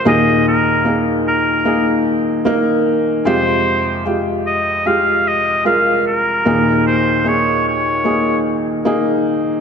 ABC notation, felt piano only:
X:1
M:4/4
L:1/8
Q:1/4=75
K:Ebmix
V:1 name="Felt piano"
[B,EA]2 [B,EA]2 [B,EA]2 [B,EB]2 | [A,FG]2 [A,FG]2 [A,FG]2 [A,FB]2 | [B,EA]2 [B,EA]2 [B,EA]2 [B,EA]2 |]
V:2 name="Felt piano" clef=bass
[E,,B,,]8 | [F,,C,]8 | [E,,B,,]8 |]